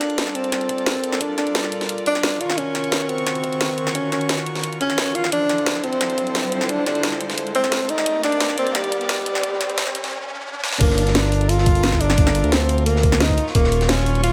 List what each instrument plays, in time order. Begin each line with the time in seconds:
Already playing: string section G3 F4 A4 A#4 D5, tenor saxophone D4, riser
0.01 snare, closed hi-hat
0.10 closed hi-hat
0.18 snare, closed hi-hat
0.27 snare
0.35 tenor saxophone C4, closed hi-hat
0.44 closed hi-hat
0.52 snare, closed hi-hat
0.61 closed hi-hat
0.69 kick, closed hi-hat
0.78 closed hi-hat
0.86 snare, closed hi-hat
0.95 kick
1.04 closed hi-hat
1.12 snare
1.21 tenor saxophone D4, kick, closed hi-hat
1.38 tenor saxophone D4, snare, closed hi-hat
1.47 closed hi-hat
1.55 snare, closed hi-hat
1.64 snare
1.72 closed hi-hat
1.81 snare, closed hi-hat
1.89 closed hi-hat
1.98 closed hi-hat
2.06 tenor saxophone D4, kick, closed hi-hat
2.15 snare, closed hi-hat
2.23 snare, closed hi-hat
2.40 string section D#3 F#4 C#6, tenor saxophone F4, closed hi-hat
2.50 snare
2.58 tenor saxophone C#4, kick, closed hi-hat
2.75 snare, closed hi-hat
2.84 closed hi-hat
2.92 snare, closed hi-hat
3.01 snare
3.09 tenor saxophone C4, closed hi-hat
3.18 closed hi-hat
3.27 snare, closed hi-hat
3.35 closed hi-hat
3.44 kick, closed hi-hat
3.53 closed hi-hat
3.61 snare, closed hi-hat
3.70 kick
3.78 closed hi-hat
3.87 snare
3.95 tenor saxophone C#4, kick, closed hi-hat
4.12 tenor saxophone C#4, snare, closed hi-hat
4.21 closed hi-hat
4.29 snare, closed hi-hat
4.38 snare
4.46 closed hi-hat
4.55 snare, closed hi-hat
4.63 closed hi-hat
4.73 closed hi-hat
4.81 tenor saxophone C#4, kick, closed hi-hat
4.90 snare, closed hi-hat
4.98 snare, closed hi-hat
5.15 tenor saxophone F4, closed hi-hat
5.24 snare
5.32 string section D3 E4 F4 A4 C5, tenor saxophone D4, kick, closed hi-hat
5.49 snare, closed hi-hat
5.58 closed hi-hat
5.66 snare, closed hi-hat
5.75 snare
5.84 tenor saxophone C4, closed hi-hat
5.93 closed hi-hat
6.01 snare, closed hi-hat
6.10 closed hi-hat
6.18 kick, closed hi-hat
6.27 closed hi-hat
6.35 snare, closed hi-hat
6.44 kick
6.52 closed hi-hat
6.61 snare
6.69 tenor saxophone D4, kick, closed hi-hat
6.86 tenor saxophone D4, snare, closed hi-hat
6.95 closed hi-hat
7.03 snare, closed hi-hat
7.12 snare
7.21 closed hi-hat
7.30 snare, closed hi-hat
7.38 closed hi-hat
7.47 closed hi-hat
7.55 tenor saxophone C4, kick, closed hi-hat
7.64 snare, closed hi-hat
7.72 snare, closed hi-hat
7.89 string section C3 D#3 G4 A#4 D5, tenor saxophone D#4, closed hi-hat
7.98 snare
8.06 kick, closed hi-hat
8.23 tenor saxophone D4, snare, closed hi-hat
8.32 closed hi-hat
8.40 snare, closed hi-hat
8.49 snare
8.58 tenor saxophone C4, closed hi-hat
8.67 closed hi-hat
8.75 tenor saxophone G3, snare, closed hi-hat
8.84 closed hi-hat
8.92 kick, closed hi-hat
9.01 closed hi-hat
9.09 snare, closed hi-hat
9.18 kick
9.26 closed hi-hat
9.35 snare
9.43 kick, closed hi-hat
9.61 snare, closed hi-hat
9.70 closed hi-hat
9.78 snare, closed hi-hat
9.87 snare
9.95 closed hi-hat
10.04 snare, closed hi-hat
10.64 snare
10.73 snare
10.81 analog synth bass G1, tenor saxophone A#3, string section F4 A4 A#4, kick, closed hi-hat, crash
10.90 snare
10.98 closed hi-hat
11.07 snare, closed hi-hat
11.15 tenor saxophone D4, snare, closed hi-hat
11.24 snare
11.32 closed hi-hat
11.41 closed hi-hat
11.49 tenor saxophone F4, closed hi-hat
11.58 snare
11.66 kick, closed hi-hat
11.75 closed hi-hat
11.83 snare, closed hi-hat
11.92 kick, snare
12.01 analog synth bass G1, tenor saxophone D4, closed hi-hat
12.10 snare
12.17 kick, closed hi-hat
12.27 snare
12.35 closed hi-hat
12.44 analog synth bass D2, closed hi-hat
12.52 tenor saxophone C4, snare, closed hi-hat
12.61 snare
12.69 closed hi-hat
12.78 closed hi-hat
12.86 tenor saxophone A#3, closed hi-hat
12.96 snare
13.03 kick, closed hi-hat
13.12 snare, closed hi-hat
13.20 tenor saxophone D#4, snare, closed hi-hat
13.30 kick
13.37 string section F#3 C#6, closed hi-hat
13.47 snare
13.55 analog synth bass D#1, tenor saxophone A#3, kick, closed hi-hat
13.64 snare
13.72 closed hi-hat
13.81 snare, closed hi-hat
13.89 tenor saxophone C#4, snare, closed hi-hat
13.97 snare
14.06 closed hi-hat
14.15 closed hi-hat
14.23 tenor saxophone F4, closed hi-hat